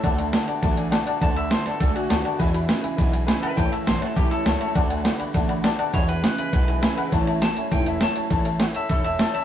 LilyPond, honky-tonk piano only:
\new Staff \with { instrumentName = "Honky-tonk piano" } { \time 4/4 \key a \major \tempo 4 = 203 <d'' fis'' a''>8 <d'' fis'' a''>8 <d'' fis'' a''>8 <d'' fis'' a''>8 <d'' fis'' a''>8 <d'' fis'' gis''>8 <d'' fis'' a''>8 <d'' fis'' a''>8 | <d'' fis'' a''>8 <d'' fis'' b''>8 <d'' fis'' a''>8 <d'' fis'' a''>8 <d'' fis'' gis''>8 <d'' fis'' gis''>8 <d'' fis'' a''>8 <d'' fis'' a''>8 | <b' e'' gis''>8 <b' e'' b''>8 <b' e'' gis''>8 <b' e'' gis''>8 <b' e'' gis''>8 <b' e'' gis''>8 <b' e'' gis''>8 <b' e'' fis''>8 | <cis'' e'' a''>8 <cis'' e'' a''>8 <cis'' e'' a''>8 <cis'' e'' fis''>8 <cis'' e'' a''>8 <cis'' e'' a''>8 <cis'' e'' a''>8 <cis'' e'' a''>8 |
<d'' fis'' a''>8 <d'' fis'' gis''>8 <d'' fis'' b''>8 <d'' fis'' b''>8 <d'' fis'' a''>8 <d'' fis'' b''>8 <d'' fis'' a''>8 <d'' fis'' a''>8 | <b' e'' gis''>8 <b' e'' fis''>8 <b' e'' gis''>8 <b' e'' gis''>8 <b' e'' fis''>8 <b' e'' gis''>8 <b' e'' gis''>8 <b' e'' fis''>8 | <cis'' e'' a''>8 <cis'' e'' a''>8 <cis'' e'' a''>8 <cis'' e'' gis''>8 <cis'' e'' a''>8 <cis'' e'' a''>8 <cis'' e'' a''>8 <cis'' e'' a''>8 | <cis'' e'' a''>8 <cis'' e'' a''>8 <cis'' e'' fis''>8 <cis'' e'' a''>8 <cis'' e'' b''>8 <cis'' e'' a''>8 <cis'' e'' a''>8 <cis'' e'' a''>8 | }